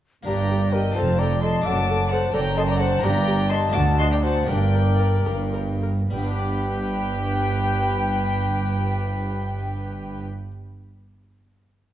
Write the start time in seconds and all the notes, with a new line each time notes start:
0.23 A#3 D4 G4 D5 A#5
0.27 G1 G2 G4 G5
0.51 G4
0.72 G4 A#4 D#5 G5
0.92 C4 F4 A4 A5
0.96 F1 F2 A4 C5 F5
1.18 A4 D5 G5 A#5
1.42 A4 D#5 A5 C6
1.61 F#1 A3 D4 A4 A5 D6
1.65 F#2 A4 F#5
1.88 A4
2.09 A4 C5 F#5 A5
2.33 F#1 F#2 A4 D5 G5 A#5
2.57 A4 D#5 A5 C6
2.68 D5 G5 A#5
2.80 A4 C5 F#5 A5
2.99 G1 G2 A#3 D4 G4 G5 A#5
3.03 G2 G4 D5
3.27 G4
3.49 G4 D#5 A5 C6
3.69 A3 D4 F#4 D6
3.73 D2 F#4 F#5 A5
3.98 F#4 D#5 A5 C6
4.11 D5 G5 A#5
4.22 F#4 C5 F#5 A5
4.43 A#3 D4 G4 A#4
4.48 G1 G2 A#4 D5 G5
4.73 A#4
4.98 A#4
5.26 G1 G2 A#4
5.54 A#4
5.82 A#4
6.10 G1 G2 G3 G4 B4 G5
6.17 B3
6.24 D4
6.31 G4
6.38 D5